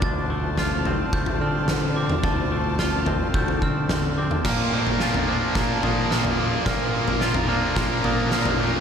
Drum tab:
CC |----------------|----------------|x---------------|----------------|
SD |----o-------o---|----o-------o---|o---o---o---o---|o---o---o---o---|
T2 |---------------o|------o-----o--o|-----o-------o--|-----o-------o--|
FT |o---o-o--o--o---|o---o-o--o--o---|o--o-o--o-o--o--|o--o-o--o-o--o--|
BD |o-------o-------|o-------o-o-----|o-------o-------|o-------o-------|